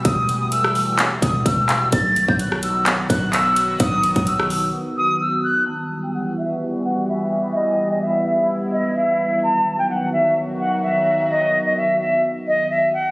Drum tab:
HH |x-x-x-o-x-x-x-x-|x-x-x-x-x-x-x-x-|x-xxx-o---------|----------------|
CP |--------x-----x-|--------x---x---|----------------|----------------|
SD |-----r----------|-----r----------|-----r----------|----------------|
BD |o---------o-o---|o--o------o-----|o--o------------|----------------|

HH |----------------|----------------|----------------|
CP |----------------|----------------|----------------|
SD |----------------|----------------|----------------|
BD |----------------|----------------|----------------|